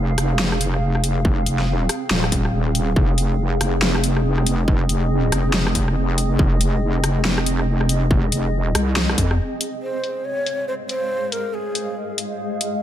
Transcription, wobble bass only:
0.00 0.16 F1 loud
0.18 1.45 F1 loud
1.46 1.88 F1 loud
2.11 2.95 D#1 loud
2.96 3.59 F1 loud
3.61 4.88 F1 loud
4.89 5.31 F1 loud
5.32 5.95 F1 loud
5.96 6.38 F1 medium
6.39 7.02 F1 loud
7.03 8.31 F1 loud
8.32 8.74 F1 loud
8.75 9.16 C2 medium
9.18 9.39 F2 loud

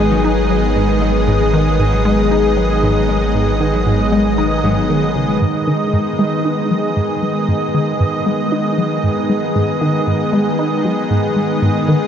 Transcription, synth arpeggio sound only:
0.00 0.18 G#3 loud
0.24 0.38 D#4 medium
0.50 0.64 F#3 medium
0.76 0.96 G#2 medium
1.02 1.15 G#3 medium
1.28 1.41 G#2 medium
1.54 1.67 D#3 loud
1.79 1.93 G#2 medium
2.05 2.25 G#3 loud
2.31 2.45 D#4 medium
2.57 2.70 F#3 medium
2.83 3.03 G#2 medium
3.09 3.22 G#3 medium
3.35 3.48 G#2 medium
3.60 3.74 D#3 medium
3.86 4.00 G#2 medium
4.12 4.32 G#3 loud
4.38 4.51 D#4 medium
4.64 4.77 G#2 loud
4.90 5.03 D#3 medium
5.16 5.24 C#3 medium
5.41 5.55 G#2 medium
5.67 5.81 D#3 loud
5.93 6.07 G#2 medium
6.19 6.39 G#3 loud
6.45 6.58 D#4 medium
6.71 6.84 F#3 medium
6.97 7.17 G#2 medium
7.23 7.36 G#3 medium
7.48 7.62 G#2 medium
7.74 7.88 D#3 loud
8.00 8.14 G#2 medium
8.26 8.46 G#3 loud
8.52 8.65 D#4 medium
8.78 8.91 F#3 medium
9.04 9.24 G#2 medium
9.29 9.43 G#3 medium
9.55 9.69 G#2 medium
9.81 9.95 D#3 loud
10.07 10.20 G#2 medium
10.33 10.53 G#3 loud
10.59 10.72 D#4 medium
10.85 10.98 F#3 medium
11.11 11.31 G#2 medium
11.36 11.50 G#3 medium
11.62 11.76 G#2 medium
11.88 12.02 D#3 loud

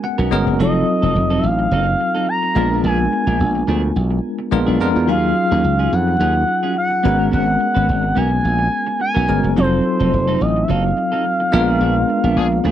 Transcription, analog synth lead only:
0.62 1.41 D#5 medium
1.39 1.47 E5 medium
1.46 2.28 F5 loud
2.29 2.81 A#5 loud
2.86 3.93 G#5 loud
5.10 5.95 F5 loud
5.94 6.77 F#5 loud
6.78 7.30 F#5 loud
7.34 8.19 F#5 loud
8.17 9.01 G#5 loud
9.01 9.53 G#5 loud
9.58 10.43 C5 loud
10.41 10.65 D#5 medium
10.63 10.71 E5 medium
10.70 12.71 F5 loud

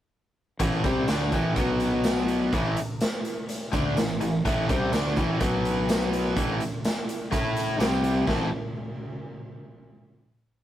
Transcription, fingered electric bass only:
0.60 0.82 A1 medium
0.84 1.07 C2 medium
1.08 1.31 D2 medium
1.32 1.55 A1 medium
1.56 2.49 B1 medium
2.53 2.75 A1 medium
3.73 3.95 D2 medium
3.97 4.20 A1 medium
4.21 4.43 A1 medium
4.45 4.67 A1 medium
4.70 4.92 C2 loud
4.93 5.15 D2 loud
5.17 5.40 A1 medium
5.41 6.33 B1 medium
6.37 6.59 A1 medium
7.32 7.77 A2 medium
7.79 8.24 C2 medium
8.27 8.50 A1 medium

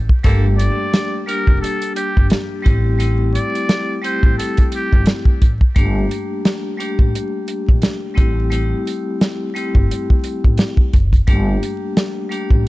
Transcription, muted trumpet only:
0.58 1.23 D5 medium
1.28 1.59 A#4 medium
1.61 1.93 A4 medium
1.96 2.27 G4 medium
3.35 4.00 D5 medium
4.05 4.35 C5 medium
4.38 4.69 A4 medium
4.75 5.05 G4 medium

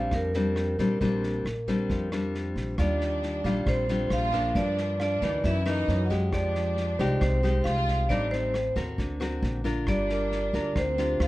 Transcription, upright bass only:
0.12 0.74 F2 medium
0.79 0.99 A#1 medium
1.01 1.42 A#1 medium
1.45 1.86 A#1 medium
1.90 2.52 F2 medium
2.56 2.76 A#1 medium
2.78 3.41 D#2 loud
3.44 3.65 A#1 medium
3.66 4.08 A#1 medium
4.10 4.57 A#1 medium
4.55 5.18 G2 medium
5.22 5.42 D2 medium
5.44 5.85 F#2 medium
5.88 6.33 F#2 medium
6.33 6.95 F2 loud
6.99 7.20 C2 medium
7.21 7.62 C2 medium
7.66 8.10 C2 medium
8.10 8.72 A1 medium
8.76 8.97 D#2 medium
8.98 9.39 D2 medium
9.42 9.87 A#1 loud
9.87 10.49 G1 medium
10.53 10.74 D2 medium
10.76 11.17 D2 medium
11.20 11.28 D2 medium

